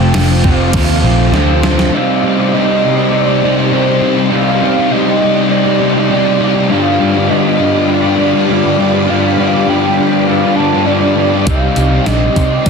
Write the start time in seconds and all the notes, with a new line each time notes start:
Already playing: F1 F2 C3 F3 A3 C4 F4 C5 G5 A5 D6
0.13 F1 F2 C3 F3 A3 C4 F4, snare, crash
0.17 F3
0.43 F1 F2 C3 F3 A3 C4 F4 F5, kick
0.48 C3
0.72 D#2 F2 C3 F3 A3 C4 F4, kick, crash
0.77 F3
1.02 A#1 F3 A3 C4 F4
1.07 C3
1.32 D2 F2 C3 F3 A3 C4 F4 C5, snare
1.36 F3
1.63 C3 F3 A3 C4 F4, snare
1.79 snare
1.92 C3 G3 C4 D#4 G4 D5 F5 C6 D6
2.23 C3 G3 C4 D#4 G4 D5
2.38 G3 C4 D#4 G4 D5
2.52 C3 G3 C4 D#4 G4 D#5
2.57 D5
2.68 C4 D#4 G4 D5
2.82 C3 G3 C4
2.98 C4 D#4 G4 D5
3.11 C3 G3 C4 D#4 D5
3.27 G3 C4 D#4 G4 D5
3.41 C3 G3 C4 D#4 G4
3.46 D5
3.57 G3 C4 D#4 G4 D5
3.71 C3 G3 C4 D#4 G4 C5 D5
3.87 G3 C4
4.01 C3 G3 C4 D#4 G4
4.05 D5
4.16 G3 C4 D#4 G4 D5
4.29 C3 G3 C4 D#4 G4 D5 F5
4.34 C4
4.60 C3 G3 C4 D#4 G4
4.64 D5
4.75 G3 C4 D#4 G4 D5
4.90 C3 G3 C4 D#4 G4 D5 D#5
5.05 C4 D#4 G4 D5
5.20 C3 G3 C4
5.34 C4 D#4 G4 D5
5.49 C3 G3 C4 D#4 D5
5.64 C4 D#4 G4 D5
5.69 G3
5.80 C3 G3 C4 D#4 G4 D5
5.93 C4 D#4 G4 D5
5.98 G3
6.08 C3 G3 C4 D#4 G4 D5
6.13 C4
6.24 G3 C4
6.39 C3 G3 C4 D#4 G4 D5
6.43 C4
6.53 C4 D#4 G4 D5
6.58 G3
6.68 G2 D3 F3 G3 B3 D4 F4 F5 B5 D6
6.72 G3 B4 D5
6.99 G2 D3 G3 D4 F4 B4 D5
7.13 G3 F4 B4 D5
7.18 D3
7.27 G2 D3 G3 D4 F4 B4 D5 D#5
7.32 G3
7.43 F4 B4 D5
7.58 G2 D3 G3
7.73 F4 B4 D5
7.87 G2 D3 F3 B3 D4 D5
8.02 D3 G3 F4 B4 D5
8.17 G2 D3 D4 F4 B4 D5
8.21 G3
8.32 D3 G3 F4 B4 D5
8.47 G2 D3 G3 D4 F4 B4 D5
8.51 G3
8.63 D3 G3
8.77 G2 D3 G3 D4 F4 B4 D5
8.92 D3 G3 B4 D5
8.96 F4
9.07 G2 D3 F3 G3 B3 D4 F4 B4 D5 F5
9.37 G2 D3 G3 D4 F4 B4 D5
9.52 D3 G3 F4 B4 D5
9.67 G2 D3 G3 D4 F4 B4 D5 G5
9.82 F4 B4 D5
9.97 G2 D3 G3
10.11 F4 B4 D5
10.27 G2 D3 F3 B3 D4 F5
10.41 G3 F4 B4 D5
10.46 D3
10.55 G2 D3 D4 F4 B4 D5 A5
10.60 G3
10.71 G3 F4 B4 D5
10.75 D3
10.86 G2 D3 G3 D4 F4 B4 D5
11.01 D3 G3
11.15 G2 D3 G3 D4 F4 B4 D5
11.31 D3 G3 F4 B4 D5
11.45 C2 C3 G3 C4 D#4 G4 D5 F5 C6, kick, open hi-hat
11.75 C2 C3 G3 C4 D#4 G4 D5, open hi-hat
11.79 C4
11.91 G3 C4 D#4 G4 D5
12.05 A#1 C3 G3 C4 D#4 G4 D5 D#5, snare, open hi-hat
12.19 C4 D#4 G4 D5
12.35 C3 G3 C4, kick, open hi-hat
12.50 C4 D#4 G4 D5
12.64 C2 C3 G3 C4 D#4 D5, kick, open hi-hat